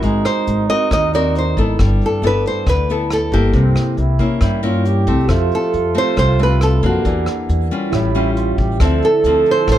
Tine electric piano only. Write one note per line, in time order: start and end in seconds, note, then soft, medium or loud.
5.25 6.99 G4 medium
5.25 7.01 A4 medium
5.25 7.01 C5 medium
5.31 7.02 E5 medium
7.02 7.89 G4 soft
7.02 7.90 A#4 soft
7.06 7.92 D5 soft
7.06 7.92 F#5 medium
7.90 8.77 E4 medium
7.90 8.78 G4 medium
7.95 8.80 C#5 medium
7.95 8.81 E5 medium
8.81 9.78 A4 medium
8.81 9.78 C5 medium
8.85 9.78 E5 medium